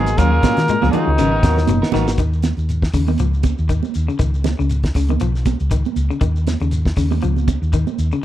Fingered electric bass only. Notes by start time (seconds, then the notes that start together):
Already playing: G#1
0.19 D#2
0.57 D#3
0.69 muted fingered electric bass stroke
0.83 C#2
1.07 C#2
1.19 G#1
1.43 D#2
1.68 F#1
1.94 G#1
2.18 D#2
2.57 D#2
2.94 D#2
3.19 C#2
3.59 D#2
3.96 D#2
4.20 C#2
4.59 C#2
4.95 C#2
5.21 B1
5.60 C#2
5.96 C#2
6.21 D#2
6.60 D#2
6.97 D#2
7.23 C#2
7.62 D#2
7.99 D#2